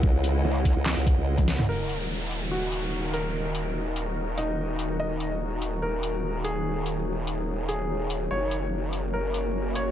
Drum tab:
CC |----------------|x---------------|----------------|----------------|
HH |--x---o---x--xx-|--x---x---x---x-|--x---x---x---x-|--x---x---x---x-|
CP |--------x-------|----------------|----------------|----------------|
SD |--------o-----or|----------------|----------------|----------------|
T1 |-------------o--|----------------|----------------|----------------|
T2 |---------------o|----------------|----------------|----------------|
BD |o-----o---o--o--|----------------|----------------|----------------|

CC |----------------|----------------|
HH |--x---x---x---x-|--x---x---x---x-|
CP |----------------|----------------|
SD |----------------|----------------|
T1 |----------------|----------------|
T2 |----------------|----------------|
BD |----------------|----------------|